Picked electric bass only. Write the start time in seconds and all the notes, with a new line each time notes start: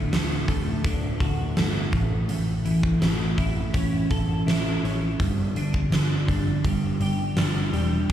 0.13 D1
0.49 D1
0.85 D1
1.21 D1
1.58 G1
1.94 A1
2.29 A1
2.66 A1
3.02 A1
3.39 A1
3.74 A1
4.11 A1
4.46 A1
4.83 A1
5.20 G1
5.55 G1
5.91 G1
6.29 G1
6.64 G1
7.00 G1
7.37 G1
7.73 E1
8.09 D1